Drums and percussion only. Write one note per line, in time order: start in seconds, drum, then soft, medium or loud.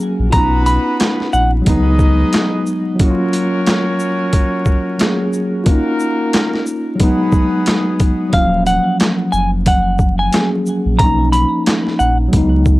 0.33 kick loud
0.33 closed hi-hat medium
0.66 closed hi-hat medium
0.66 shaker medium
1.00 snare loud
1.00 clap loud
1.00 closed hi-hat medium
1.20 snare soft
1.33 shaker medium
1.66 kick loud
1.66 closed hi-hat medium
1.99 kick medium
1.99 shaker medium
2.33 snare loud
2.33 clap medium
2.33 closed hi-hat medium
2.66 shaker medium
2.99 kick loud
2.99 closed hi-hat medium
3.33 closed hi-hat medium
3.33 shaker medium
3.66 snare loud
3.66 clap loud
3.66 closed hi-hat medium
4.00 shaker medium
4.33 kick medium
4.33 closed hi-hat medium
4.65 kick medium
4.65 shaker medium
4.99 snare loud
4.99 clap medium
4.99 closed hi-hat medium
5.33 shaker medium
5.66 kick loud
5.66 closed hi-hat medium
6.00 shaker medium
6.33 snare loud
6.33 clap loud
6.33 closed hi-hat medium
6.54 snare soft
6.66 shaker medium
7.00 kick loud
7.00 closed hi-hat medium
7.32 kick medium
7.32 shaker medium
7.66 snare loud
7.66 clap medium
7.66 closed hi-hat medium
8.00 kick medium
8.00 closed hi-hat medium
8.00 shaker medium
8.33 kick loud
8.33 closed hi-hat medium
8.66 closed hi-hat medium
8.66 shaker medium
9.00 snare loud
9.00 clap loud
9.00 closed hi-hat medium
9.33 shaker medium
9.66 kick loud
9.66 closed hi-hat loud
9.99 kick medium
9.99 shaker medium
10.32 snare loud
10.32 clap medium
10.32 closed hi-hat medium
10.66 shaker medium
10.99 kick loud
10.99 closed hi-hat medium
11.33 closed hi-hat medium
11.33 shaker medium
11.66 snare loud
11.66 clap loud
11.66 closed hi-hat medium
11.87 snare soft
11.99 shaker medium
12.33 kick loud
12.33 closed hi-hat medium
12.66 kick medium
12.66 shaker medium